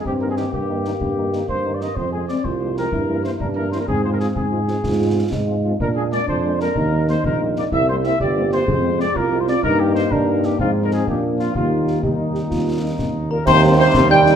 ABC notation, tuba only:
X:1
M:6/8
L:1/8
Q:3/8=125
K:Eb
V:1 name="Tuba" clef=bass
G,,3 G,,3 | G,,3 G,,3 | F,,3 C,,3 | G,,3 G,,3 |
A,,3 A,,3 | A,,3 A,,3 | B,,3 F,,3 | E,,3 B,,,3 |
C,,3 G,,,3 | F,,3 C,,3 | G,,3 G,,3 | A,,3 B,,3 |
E,,3 E,,3 | E,,3 E,,3 | [K:Cdor] E,,3 E,,3 |]